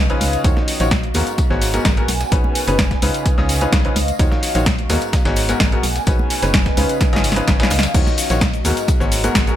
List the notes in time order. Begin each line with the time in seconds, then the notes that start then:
Already playing: C#2 C#4 B4 D#5 F5
0.10 C#3 C#4 D#4 F4 B4, closed hi-hat
0.21 C#2, open hi-hat, tambourine, high conga
0.33 closed hi-hat, tambourine
0.44 D#2 D#3 D#4 F4 F#4 C#5, kick, closed hi-hat, tambourine
0.57 snare, high conga
0.68 open hi-hat, tambourine
0.72 F#4
0.80 A#1 D#3 D#4 F4 F#4 C#5, snare, closed hi-hat, tambourine
0.91 kick, snare, closed hi-hat, tambourine
1.03 closed hi-hat, high conga
1.14 D#2 G#2 B3 F#4 G#4 A#4, open hi-hat, tambourine
1.27 closed hi-hat, tambourine
1.38 B3 A#4, kick, closed hi-hat, tambourine, high conga
1.50 G#1 G#2 B3 F#4 G#4 C#5, snare
1.62 open hi-hat, tambourine
1.70 G#2 B3 F#4 G#4 A#4 F#5 G#5, closed hi-hat
1.74 tambourine, high conga
1.85 G#1, kick, snare, closed hi-hat, tambourine
1.97 B2 B3 F#4 G#4 A#4, closed hi-hat
2.08 B1 C#4, open hi-hat, tambourine, high conga
2.13 B4
2.20 snare, closed hi-hat, tambourine
2.32 B1 B2 C#4 D#4 G#4 B4 D#5, kick, closed hi-hat, tambourine
2.44 high conga
2.55 open hi-hat, tambourine
2.67 F#1 B2 C#4 D#4 G#4 B4, closed hi-hat, tambourine
2.79 kick, snare, closed hi-hat, tambourine
2.91 kick, snare, closed hi-hat, high conga
3.02 C#2 C#3 C#4 D#4 F4 B4, open hi-hat, tambourine
3.14 closed hi-hat, tambourine
3.26 kick, closed hi-hat, tambourine, high conga
3.38 C#2 C#3 C#4 D#4 F4 D#5, snare
3.49 open hi-hat, tambourine
3.56 F5
3.61 C#3 C#4 D#4 F4 B4, closed hi-hat, tambourine, high conga
3.73 C#2, kick, snare, closed hi-hat, tambourine
3.85 C#3 C#4 D#4 F4 B4, closed hi-hat
3.96 C#2, open hi-hat, tambourine, high conga
4.08 closed hi-hat, tambourine
4.19 D#2 D#3 D#4 F4 F#4 C#5, kick, closed hi-hat, tambourine
4.32 snare, high conga
4.41 F#4, open hi-hat, tambourine
4.55 A#1 D#3 D#4 F4 F#4 C#5, snare, closed hi-hat, tambourine
4.66 kick, snare, closed hi-hat, tambourine
4.79 closed hi-hat, high conga
4.89 D#2 G#2 B3 F#4 G#4 A#4, snare, open hi-hat, tambourine
5.01 closed hi-hat, tambourine
5.13 B3, kick, snare, closed hi-hat, tambourine, high conga
5.20 F#5
5.25 G#1 G#2 B3 F#4 G#4 C#5, snare, tambourine
5.31 A#4
5.36 open hi-hat, tambourine
5.45 G#2 B3 F#4 G#4 A#4 G#5, closed hi-hat, tambourine, high conga
5.50 tambourine
5.60 G#1, kick, snare, closed hi-hat, tambourine
5.72 B2 B3 F#4 G#4 A#4, closed hi-hat
5.83 B1 C#4, open hi-hat, tambourine, high conga
5.96 snare, closed hi-hat, tambourine
6.06 B1 B2 C#4 D#4 G#4 B4, kick, closed hi-hat, tambourine
6.19 high conga
6.25 D#5
6.30 open hi-hat, tambourine
6.42 F#1 B2 C#4 D#4 G#4 B4, snare, closed hi-hat, tambourine
6.54 kick, snare, closed hi-hat, tambourine
6.65 kick, snare, closed hi-hat, high conga
6.77 C#2 C#3 C#4 D#4 F4 B4, open hi-hat, tambourine
6.89 closed hi-hat, tambourine
7.01 kick, snare, closed hi-hat, tambourine, high conga
7.13 G#1 C#3 C#4 D#4 F4 D#5, snare, closed hi-hat
7.16 snare
7.24 open hi-hat, tambourine
7.30 F5, snare
7.36 C#3 C#4 D#4 F4 B4, closed hi-hat, tambourine, high conga
7.48 G#1, kick, snare, closed hi-hat, tambourine
7.60 C#3 C#4 D#4 F4 B4, snare, closed hi-hat, tambourine
7.63 snare
7.70 C#2, snare, open hi-hat, tambourine, high conga
7.79 snare
7.83 snare, closed hi-hat, tambourine
7.94 D#2 D#3 D#4 F4 F#4 C#5, kick, closed hi-hat, crash, tambourine, cabasa
8.07 snare, high conga, cabasa
8.14 F#4
8.18 open hi-hat, tambourine, cabasa
8.29 A#1 D#3 D#4 F4 F#4 C#5, snare, closed hi-hat, tambourine, cabasa
8.41 kick, snare, closed hi-hat, tambourine, cabasa
8.53 closed hi-hat, high conga, cabasa
8.65 D#2 G#2 B3 F#4 G#4 A#4, open hi-hat, tambourine, cabasa
8.77 closed hi-hat, tambourine, cabasa
8.88 B3, kick, closed hi-hat, tambourine, high conga, cabasa
9.00 G#1 G#2 B3 F#4 G#4 A#4 C#5 F#5, snare, cabasa
9.12 open hi-hat, tambourine, cabasa
9.20 G#2 B3 F#4 G#4 A#4 G#5, closed hi-hat, tambourine
9.24 high conga, cabasa
9.35 G#1, kick, snare, closed hi-hat, tambourine, cabasa
9.47 B2 B3 F#4 G#4 A#4, closed hi-hat, cabasa